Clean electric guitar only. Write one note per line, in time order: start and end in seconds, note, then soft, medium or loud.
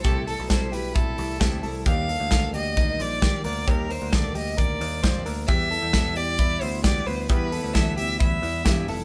0.04 0.27 G4 loud
0.27 0.49 A4 medium
0.50 0.72 A4 medium
0.72 0.95 G4 medium
0.95 1.38 E4 medium
1.40 1.63 G4 medium
1.63 1.86 A4 medium
1.86 2.09 G4 medium
2.09 2.30 A4 medium
2.32 2.54 A4 medium
2.55 2.77 G4 medium
2.77 3.20 D#4 medium
3.22 3.44 G4 medium
3.45 3.67 A#4 medium
3.67 3.89 G4 loud
3.90 4.12 A#4 medium
4.12 4.35 A4 medium
4.35 4.57 G4 medium
4.57 5.00 A#4 medium
5.03 5.25 C5 medium
5.26 5.48 A#4 medium
5.49 5.71 G4 medium
5.71 5.92 A4 medium
5.94 6.16 A4 medium
6.17 6.39 G4 medium
6.39 6.82 E4 medium
6.83 7.06 G4 medium
7.07 7.29 B4 medium
7.29 7.52 G4 loud
7.52 7.73 A4 medium
7.74 7.96 A4 medium
7.97 8.19 G4 medium
8.20 8.63 E4 medium
8.65 8.88 G4 medium
8.89 9.04 A4 medium